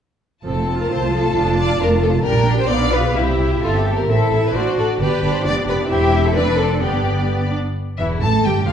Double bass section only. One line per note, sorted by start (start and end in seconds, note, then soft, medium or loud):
0.45 0.83 F1 soft
0.91 1.28 C2 soft
1.36 1.73 F1 medium
1.81 2.18 F1 medium
2.26 2.62 A#1 medium
2.70 3.08 B1 medium
3.16 3.54 C2 soft
3.62 4.01 G1 soft
4.09 4.17 A1 soft
4.32 4.40 A1 soft
4.55 4.63 A1 soft
4.78 4.86 A1 soft
5.00 5.08 G1 medium
5.23 5.31 G1 medium
5.46 5.54 F1 medium
5.67 5.75 F1 medium
5.90 6.32 E1 medium
6.36 6.82 F1 medium
6.82 7.55 G1 soft
7.99 8.20 E1 soft
8.22 8.44 A1 soft
8.44 8.67 G1 soft
8.66 8.72 F1 medium